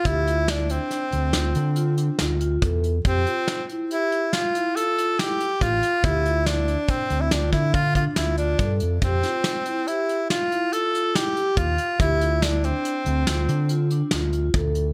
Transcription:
<<
  \new Staff \with { instrumentName = "Vibraphone" } { \time 7/4 \key d \minor \tempo 4 = 141 g'8 f'8 e'8 d'4 c'8 f'8 d'8 f'8 d'8 f'8 f'8 a'4 | g'8 f'4 e'8 g'4 f'8 e'8 f'8 f'8 e'8 g'8 f'8 f'8 | g'8 f'8 e'8 d'4 c'8 f'8 d'8 r8 d'8 f'8 f'8 a'4 | g'8 f'4 e'8 g'4 f'8 e'8 f'8 f'8 r8 g'8 f'8 r8 |
g'8 f'8 e'8 d'4 c'8 f'8 d'8 f'8 d'8 f'8 f'8 a'4 | }
  \new Staff \with { instrumentName = "Tenor saxophone" } { \time 7/4 \key d \minor e'4 d'8 c'2. r2 r8 | c'4. r8 e'4 f'4 a'4 g'4 f'4 | e'4 d'4 c'8. e'16 d'8 e'8 f'8 f'8 e'8 d'4 r8 | c'2 e'4 f'4 a'4 g'4 f'4 |
e'4 d'8 c'2. r2 r8 | }
  \new Staff \with { instrumentName = "Fingered electric bass" } { \clef bass \time 7/4 \key d \minor d,2 r8 d,8 d,8 d4. d,4 e,4 | f,8 r1 r4. a,,8 r8 | d,2 r8 d,8 d,8 d4. d,4 g,8 f,8 | f,8 r1 r4. ees,8 r8 |
d,2 r8 d,8 d,8 d4. d,4 d,4 | }
  \new DrumStaff \with { instrumentName = "Drums" } \drummode { \time 7/4 <hh bd>8 hh8 <hh sn>8 hh8 <hh sn>8 hh8 <hh sn>8 hh8 hh8 hh8 <hh sn>8 hh8 <hh bd>8 hh8 | <hh bd>8 hh8 <hh sn>8 hh8 hh8 hh8 <hh sn>8 hh8 hh8 hh8 <hh sn>8 hh8 <hh bd sn>8 hh8 | <hh bd>8 hh8 <hh sn>8 hh8 <hh bd>8 hh8 <hh sn>8 <hh bd sn>8 <hh bd>8 <hh bd>8 <hh sn>8 hh8 <hh bd>8 hh8 | <hh bd>8 <hh sn>8 <hh sn>8 hh8 hh8 hh8 <hh sn>8 hh8 hh8 hh8 <hh sn>8 hh8 <hh bd>8 hh8 |
<hh bd>8 hh8 <hh sn>8 hh8 hh8 hh8 <hh sn>8 hh8 hh8 hh8 <hh sn>8 hh8 <hh bd>8 hh8 | }
>>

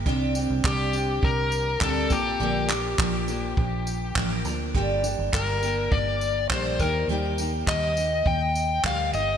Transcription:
<<
  \new Staff \with { instrumentName = "Electric slide guitar" } { \time 4/4 \key bes \major \tempo 4 = 102 r4 g'4 bes'4 a'8 g'8~ | g'2.~ g'8 r8 | r4 bes'4 d''4 c''8 bes'8 | r4 ees''4 g''4 f''8 ees''8 | }
  \new Staff \with { instrumentName = "Steel-string acoustic guitar" } { \time 4/4 \key bes \major <c g c' d' g'>8 <c' d' g'>8 <g c' d' g'>8 <c' d' g'>4. <g c' d' g'>8 <f bes d' bes'>8 | <bes, d f bes d' bes'>8 <f bes d' bes'>8 <f bes d' bes'>8 <f bes d' bes'>4. <f bes d' bes'>8 <f bes d' bes'>8 | <g, d g bes d' g'>8 <g bes d' g'>8 <g bes d' g'>8 <g bes d' g'>4. <g bes d' g'>8 <bes ees' g'>8 | <ees g bes ees' g'>8 <bes ees' g'>8 <g bes ees' g'>8 <bes ees' g'>4. <g bes ees' g'>8 <bes ees' g'>8 | }
  \new Staff \with { instrumentName = "Fingered electric bass" } { \clef bass \time 4/4 \key bes \major c,8. c,16 c,4 c,4 d,8 bes,,8 | bes,,4 bes,,4 bes,,4 a,,8 d,8 | g,,8. g,,16 g,,4 g,,4 bes,,8 ees,8 | ees,4 ees,4 ees,4 d,8 g,,8 | }
  \new DrumStaff \with { instrumentName = "Drums" } \drummode { \time 4/4 bd8 tamb8 <hc bd>8 tamb8 bd8 tamb8 <hc bd>8 <bd tamb>8 | r8 <hc tamb>8 <hc bd>8 tamb8 bd8 tamb8 <hc bd>8 tamb8 | bd8 tamb8 <hc bd>8 tamb8 bd8 tamb8 <hc bd>8 <bd tamb>8 | r8 tamb8 <hc bd>8 tamb8 bd8 tamb8 <hc bd>8 tamb8 | }
>>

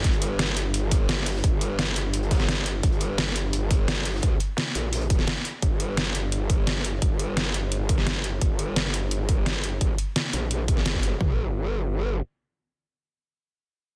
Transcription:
<<
  \new Staff \with { instrumentName = "Wobble bass" } { \clef bass \time 4/4 \key g \minor \tempo 4 = 172 g,,1 | g,,1 | g,,1 | d,8 r4 bes,,4. r4 |
g,,1 | g,,1 | g,,1 | g,,8 r4 bes,,4. g,,4 |
g,,2. r4 | r1 | }
  \new DrumStaff \with { instrumentName = "Drums" } \drummode { \time 4/4 <hh bd>16 hh16 hh8 <hh sn>8 hh8 hh8 <hh bd sn>8 <hh sn>16 sn16 <hh hho>16 sn16 | <hh bd>8 hh8 <hh sn>8 hh8 hh16 hh16 <hh bd sn>32 <hh sn>32 <hh sn>16 <hh sn>16 sn16 hh8 | <hh bd>16 hh16 hh8 <hh sn>8 hh8 hh8 <hh bd sn>8 <hh sn>16 sn16 <hh hho>16 sn16 | <hh bd>8 hh8 <hh sn>8 hh8 hh8 <hh bd>16 <hh sn>16 <hh sn>16 sn16 hh8 |
<hh bd>8 hh8 <hh sn>8 hh8 hh8 <hh bd>8 <hh sn>8 hh8 | <hh bd>8 hh8 <hh sn>8 hh8 hh8 <hh bd>16 sn16 <hh sn>8 hh8 | <hh bd>8 hh8 <hh sn>8 hh8 hh8 <hh bd>8 <hh sn>8 hh8 | <hh bd>8 hh8 <hh sn>8 hh8 hh8 <hh bd>16 sn16 <hh sn>16 bd16 hh8 |
<bd tomfh>4 r4 r4 r4 | r4 r4 r4 r4 | }
>>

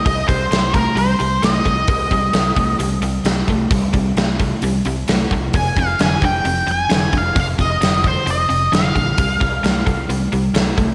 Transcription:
<<
  \new Staff \with { instrumentName = "Lead electric guitar" } { \time 4/4 \key c \minor \tempo 4 = 132 ees''8 c''4 bes'8 c''4 ees''4~ | ees''2 r2 | r1 | aes''8 f''8 aes''8 g''4 aes''4 f''8 |
f''8 ees''4 c''8 ees''4 f''4~ | f''2 r2 | }
  \new Staff \with { instrumentName = "Overdriven electric guitar" } { \clef bass \time 4/4 \key c \minor <c g>8 <c g>8 <c a>8 <c a>8 <c g>8 <c g>8 <c a>8 <c a>8 | <c g>8 <c g>8 <c a>8 <c a>8 <c g>8 <c g>8 <c a>8 <c a>8 | <c g>8 <c g>8 <c a>8 <c a>8 <c g>8 <c g>8 <c a>8 <c a>8 | <f, c>8 <f, c>8 <f, d>8 <f, d>8 <f, c>8 <f, c>8 <f, d>8 <f, d>8 |
<f, c>8 <f, c>8 <f, d>8 <f, d>8 <f, c>8 <f, c>8 <f, d>8 <f, d>8 | <c g>8 <c g>8 <c a>8 <c a>8 <c g>8 <c g>8 <c a>8 <c a>8 | }
  \new Staff \with { instrumentName = "Fingered electric bass" } { \clef bass \time 4/4 \key c \minor c,8 c,8 c,4 c,8 c,8 c,8 c,8 | c,8 c,8 c,8 c,8 c,8 c,8 c,8 c,8 | c,8 c,8 c,4 c,8 c,8 c,8 c,8 | f,,8 f,,8 f,,8 f,,8 f,,8 f,,8 f,,8 f,,8 |
f,,8 f,,8 f,,4 f,,8 f,,8 f,,8 bes,,8 | c,8 c,8 c,8 c,8 c,8 c,8 c,8 c,8 | }
  \new DrumStaff \with { instrumentName = "Drums" } \drummode { \time 4/4 <hho bd>8 <hho bd>8 <hho sn>8 <hho bd>8 hho8 hho8 <hho sn>8 <hho bd>8 | <hho bd>8 <hho bd>8 <hho sn>8 <hho bd>8 hho8 hho8 <hho sn>8 <hho bd>8 | <hho bd>8 <hho bd>8 <hho sn>8 <hho bd>8 hho8 hho8 <hho sn>8 <hho bd>8 | <hho bd>8 <hho bd>8 <hho sn>8 <hho bd>8 hho8 hho8 <hho sn>8 <hho bd>8 |
<hho bd>8 <hho bd>8 <hho sn>8 <hho bd>8 hho8 hho8 <hho sn>8 <hho bd>8 | <hho bd>8 <hho bd>8 <hho sn>8 <hho bd>8 hho8 hho8 <hho sn>8 <hho bd>8 | }
>>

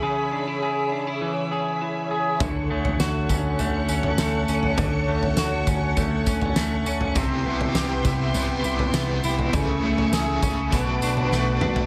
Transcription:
<<
  \new Staff \with { instrumentName = "String machine" } { \time 4/4 \key d \lydian \tempo 4 = 101 <gis' cis'' e'' b''>1 | <a' cis'' fis'' cis'''>1~ | <a' cis'' fis'' cis'''>1 | <b e'' g'' c'''>1 |
<a e'' gis'' cis'''>2 <b' fis'' a'' d'''>2 | }
  \new Staff \with { instrumentName = "Clean electric guitar" } { \time 4/4 \key d \lydian <cis e e' gis'>8 d'16 e'16 gis'8 d'16 e'16 e8 gis'8 e'8 gis'8 | d8 a8 fis'8 cis'8 a8 cis'8 a8 cis'8 | d8 a8 fis'8 cis'8 a8 cis'8 a8 cis'8 | c8 b8 g'8 e'8 b8 e'8 b8 e'8 |
cis8 a8 gis'8 cis'8 b,8 d'8 a8 d'8 | }
  \new Staff \with { instrumentName = "Overdriven electric guitar" } { \time 4/4 \key d \lydian r1 | r1 | r1 | <c g b e' g'>8 <b e' g'>8 <c g b e' g'>8 <b e' g'>8 <g b e' g'>8 <b e' g'>8 <c g b e' g'>8 <b e' g'>8 |
<cis e a cis' gis'>8 <a cis' gis'>8 <cis e a cis' gis'>8 <a cis' gis'>8 <fis a d' fis'>8 <a d' fis'>8 <b, fis a d' fis'>8 <a d' fis'>8 | }
  \new Staff \with { instrumentName = "Fingered electric bass" } { \clef bass \time 4/4 \key d \lydian r1 | d,8 d,8 d,8 d,8 d,8 d,8 d,8 d,8 | d,8 d,8 d,8 d,8 d,8 d,8 d,8 d,8 | c,8 c,8 c,8 c,8 c,8 c,8 c,8 c,8 |
cis,8 cis,8 cis,8 cis,8 b,,8 b,,8 b,,8 b,,8 | }
  \new DrumStaff \with { instrumentName = "Drums" } \drummode { \time 4/4 r4 r4 r4 r4 | <bd tamb tomfh>8. tomfh16 <sn tamb>8 <bd tamb tomfh>8 <tamb tomfh>8 tamb16 tomfh16 <sn tamb>8 tamb16 tomfh16 | <bd tamb tomfh>8. tomfh16 <sn tamb>8 <bd tamb tomfh>8 <bd tamb tomfh>8 <bd tamb>16 tomfh16 <sn tamb>8 tamb16 tomfh16 | <bd tamb tomfh>8. tomfh16 <sn tamb>8 <bd tamb tomfh>8 <tamb tomfh>8 tamb16 tomfh16 <sn tamb>8 tamb16 tomfh16 |
<bd tamb tomfh>8. tomfh16 <sn tamb>8 <bd tamb tomfh>8 <bd tamb tomfh>8 tamb16 tomfh16 sn8 toml16 tomfh16 | }
>>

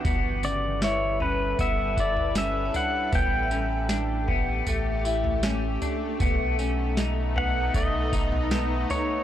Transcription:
<<
  \new Staff \with { instrumentName = "Pedal steel guitar" } { \time 4/4 \key g \lydian \tempo 4 = 78 r8 d''8 cis''8 b'8 e''8 d''8 e''8 fis''8 | g''2 r2 | r4. fis''8 dis''4. cis''8 | }
  \new Staff \with { instrumentName = "Vibraphone" } { \time 4/4 \key g \lydian r2. r16. cis''8~ cis''32~ | cis''16. e''4~ e''16. r2 r16 | r1 | }
  \new Staff \with { instrumentName = "Ambient pad" } { \time 4/4 \key g \lydian << { <g a' b'>1 | g'1 | <b dis'>1 | } \\ { e'1 | a1~ | a1 | } >> }
  \new Staff \with { instrumentName = "Clean electric guitar" } { \time 4/4 \key g \lydian b8 cis8 e'8 cis'8 b8 e'8 cis'8 d'8 | b8 cis'8 d'8 b8 a8 e'8 cis'8 d'8 | b8 cis'8 dis'8 b8 a8 dis'8 b8 dis'8 | }
  \new Staff \with { instrumentName = "Sub bass" } { \clef bass \time 4/4 \key g \lydian g,,2 g,,4. r8 | a,,2 a,,4. r8 | b,,2 b,,4. r8 | }
  \new DrumStaff \with { instrumentName = "Drums" } \drummode { \time 4/4 <bd tamb tomfh>8 tamb8 <sn tamb>8 tomfh8 <bd tamb tomfh>8 <bd tamb>16 tomfh16 <sn tamb>8 <tamb tomfh>8 | <bd tamb tomfh>8 tamb8 <sn tamb>8 <bd tomfh>8 <tamb tomfh>8 tamb16 tomfh16 <sn tamb>8 <tamb tomfh>8 | <bd tamb tomfh>8 tamb8 <sn tamb>8 tomfh8 <bd tamb tomfh>8 <bd tamb>16 tomfh16 <sn tamb>8 <tamb tomfh>8 | }
>>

